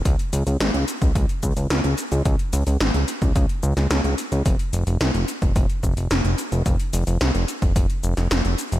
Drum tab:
HH |xxxxxxxxxx-xxxxx|xxxxxxxxxx-xxxxx|xxxxxxxxxx-xxxxx|xxxxxxxxxx-xxxxx|
SH |xxxxxxxxxxxxxxxx|xxxxxxxxxxxxxxxx|xxxxxxxxxxxxxxxx|xxxxxxxxxxxxxxxx|
SD |----o-------o---|----o------oo---|----o-------o---|----o------oo---|
BD |o------oo-o-----|o------oo-------|o------oo-o-----|o------oo-------|